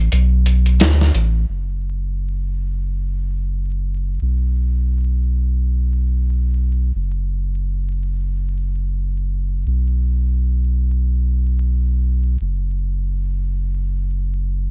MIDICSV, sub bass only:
0, 0, Header, 1, 2, 480
1, 0, Start_track
1, 0, Tempo, 500000
1, 14118, End_track
2, 0, Start_track
2, 0, Title_t, "Sub bass"
2, 0, Program_c, 0, 38
2, 118, Note_on_c, 0, 35, 104
2, 767, Note_off_c, 0, 35, 0
2, 772, Note_on_c, 0, 38, 75
2, 1069, Note_off_c, 0, 38, 0
2, 1099, Note_on_c, 0, 33, 85
2, 1396, Note_off_c, 0, 33, 0
2, 1427, Note_on_c, 0, 30, 78
2, 4020, Note_off_c, 0, 30, 0
2, 4048, Note_on_c, 0, 35, 80
2, 6639, Note_off_c, 0, 35, 0
2, 6673, Note_on_c, 0, 30, 83
2, 9261, Note_off_c, 0, 30, 0
2, 9278, Note_on_c, 0, 35, 82
2, 11873, Note_off_c, 0, 35, 0
2, 11911, Note_on_c, 0, 30, 80
2, 14118, Note_off_c, 0, 30, 0
2, 14118, End_track
0, 0, End_of_file